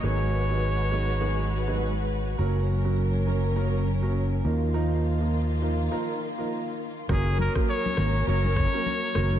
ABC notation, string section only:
X:1
M:4/4
L:1/8
Q:"Swing 16ths" 1/4=102
K:F#
V:1 name="String section"
[G,FB]8 | [F,CA]6- [F,CA] [D,A,E]- | [D,A,E]8 | [F,CA]8 |]